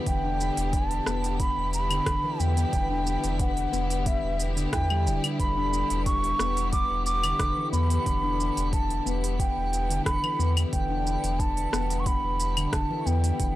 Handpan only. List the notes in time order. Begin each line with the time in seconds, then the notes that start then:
0.07 D3
0.24 D4
0.40 D4
1.06 B3
1.90 D3
2.06 D3
2.24 E3
2.40 B3
2.57 B3
2.73 D3
2.90 D4
3.06 D4
3.73 B3
4.57 D3
4.73 E4
4.91 G3
5.06 D3
5.24 D3
5.40 D3
5.57 D4
5.73 D4
6.39 B3
7.24 D3
7.39 D3
7.57 E3
7.72 B3
7.90 B3
8.06 D3
8.24 D4
8.39 D4
9.06 B3
9.90 D3
10.23 E3
10.39 B3
10.57 B3
10.73 D3
10.90 D4
11.06 D4
11.73 B3
12.57 D3
12.73 D3
12.90 E3
13.06 B3
13.24 B3
13.39 D3